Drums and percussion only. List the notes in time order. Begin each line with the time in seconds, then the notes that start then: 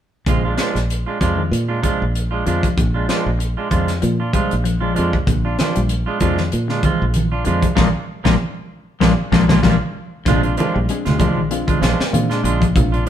0.26 kick, closed hi-hat
0.58 snare, closed hi-hat
0.76 snare, closed hi-hat
0.90 closed hi-hat
1.21 kick, closed hi-hat
1.53 closed hi-hat
1.83 kick, closed hi-hat
2.15 closed hi-hat
2.46 closed hi-hat
2.63 kick, closed hi-hat
2.78 kick, closed hi-hat
3.09 snare, closed hi-hat
3.40 closed hi-hat
3.71 kick, closed hi-hat
3.88 snare, closed hi-hat
4.02 closed hi-hat
4.33 kick, closed hi-hat
4.51 closed hi-hat
4.65 closed hi-hat
4.96 closed hi-hat
5.13 kick
5.27 kick, closed hi-hat
5.59 snare, closed hi-hat, high conga
5.76 closed hi-hat
5.89 closed hi-hat
6.20 kick, closed hi-hat, high conga
6.38 snare
6.52 closed hi-hat
6.69 snare
6.83 kick, closed hi-hat, high conga
7.14 closed hi-hat, high conga
7.45 closed hi-hat
7.62 kick, closed hi-hat
7.77 kick, snare, high conga
8.25 kick, snare, high conga
9.01 kick, snare, high conga
9.32 kick, snare, high conga
9.49 kick, snare, high conga
9.63 kick, snare, high conga
10.26 kick, snare, closed hi-hat, low conga
10.43 closed hi-hat
10.57 closed hi-hat, high conga
10.89 closed hi-hat
11.06 snare, closed hi-hat, low conga
11.19 kick, closed hi-hat, high conga
11.51 closed hi-hat
11.68 kick, closed hi-hat, high conga
11.83 snare, closed hi-hat, high conga
12.00 snare
12.14 closed hi-hat, high conga
12.31 snare, closed hi-hat
12.45 closed hi-hat
12.62 kick, closed hi-hat
12.76 kick, closed hi-hat, low conga
12.94 closed hi-hat